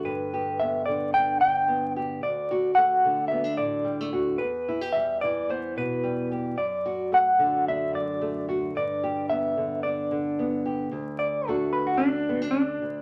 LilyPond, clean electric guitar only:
\new Staff \with { instrumentName = "Clean electric guitar" } { \time 4/4 \key d \major \tempo 4 = 110 b'4 e''8 d''8 g''8 g''4 r8 | d''4 fis''4 e''8 d''4 r8 | b'4 e''8 d''8 c''8 b'4 r8 | d''4 fis''4 e''8 d''4 r8 |
d''4 e''4 d''4. r8 | r8 d''8 a'8 b'16 fis'16 d'4 d'4 | }